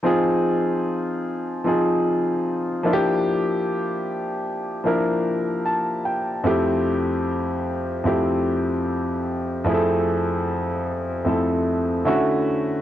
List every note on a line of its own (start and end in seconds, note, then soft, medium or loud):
0.03 1.05 F3 medium
0.03 1.06 C4 medium
0.03 1.06 D#4 medium
0.03 1.06 F4 medium
0.03 1.07 G#4 medium
1.64 2.66 F3 medium
1.64 2.66 C4 medium
1.64 2.67 D#4 medium
1.64 2.67 F4 medium
1.64 2.67 G#4 medium
2.83 4.13 F3 medium
2.83 4.13 A#3 medium
2.83 4.14 D4 medium
2.83 4.14 E4 medium
2.83 2.93 F4 medium
2.93 4.18 G4 medium
4.84 5.86 F3 medium
4.84 5.87 A#3 medium
4.84 5.87 D4 medium
4.84 5.87 E4 medium
4.84 5.88 A#4 medium
5.66 6.03 A5 medium
6.05 6.42 G5 medium
6.43 7.46 F2 medium
6.43 7.46 A3 medium
6.43 7.47 C4 medium
6.43 7.47 E4 medium
6.43 7.48 G4 medium
8.04 9.06 F2 medium
8.04 9.07 A3 medium
8.04 9.07 C4 medium
8.04 9.07 E4 medium
8.04 9.08 G4 medium
9.64 10.66 F2 medium
9.64 10.67 A3 medium
9.64 10.67 C4 medium
9.64 10.68 E4 medium
9.64 9.74 G#4 medium
9.74 10.71 A4 medium
11.25 12.05 F2 medium
11.25 12.04 A3 medium
11.25 12.06 C4 medium
11.25 12.05 E4 medium
11.25 12.07 A4 medium
12.04 12.70 D3 medium
12.04 12.71 A3 medium
12.04 12.71 C#4 medium
12.04 12.71 E4 medium
12.04 12.72 F#4 medium